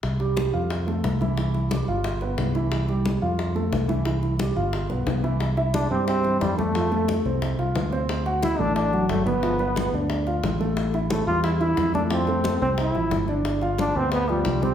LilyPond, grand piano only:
\new Staff \with { instrumentName = "Grand piano" } { \time 4/4 \key c \major \tempo 4 = 179 r8 <g g'>4 <f' f''>4 <a a'>4 <e e'>8 | <e e'>4 <g g'>8 <f' f''>4 <b b'>4 <e e'>8~ | <e e'>8 <g g'>4 <f' f''>4 <a a'>4 <e e'>8 | <e e'>4 <g g'>8 <f' f''>4 <b b'>4 <e e'>8 |
r8 <e' e''>4 <g g'>4 <e e'>4 <a a'>8 | <f f'>8 <a a'>4 <c' c''>4 <f' f''>4 <c' c''>8~ | <c' c''>8 <fis' fis''>4 <a a'>4 <fis fis'>4 <b b'>8 | <f f'>8 <b b'>4 <d' d''>4 <f' f''>4 <a a'>8~ |
<a a'>8 <e' e''>4 <g g'>4 <e e'>4 <a a'>8 | <f f'>8 <a a'>4 <c' c''>4 <f e''>4 <d' d''>8~ | <d' d''>8 <f' f''>4 <b b'>4 <f f'>4 <g g'>8 | }